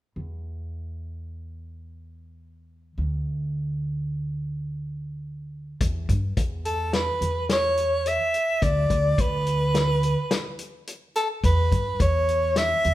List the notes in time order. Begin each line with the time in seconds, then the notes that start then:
0.16 E2
2.98 D2
5.80 E2, kick, closed hi-hat
6.09 G2, kick, closed hi-hat
6.37 E2, kick, closed hi-hat
6.65 A4, closed hi-hat
6.93 B4, snare, closed hi-hat
7.21 E2, closed hi-hat
7.49 C#5, snare, closed hi-hat
7.77 closed hi-hat
8.06 E5, closed hi-hat
8.34 closed hi-hat
8.62 D2 D5, kick, closed hi-hat
8.90 D2, kick, closed hi-hat
9.18 D2 B4, kick, closed hi-hat
9.47 closed hi-hat
9.75 snare, closed hi-hat
10.03 closed hi-hat
10.31 snare, closed hi-hat
10.59 closed hi-hat
10.87 closed hi-hat
11.16 A4, closed hi-hat
11.44 E2 B4, kick, closed hi-hat
11.72 G2, kick, closed hi-hat
12.00 E2 C#5, kick, closed hi-hat
12.28 closed hi-hat
12.56 E5, snare, closed hi-hat
12.84 E2, closed hi-hat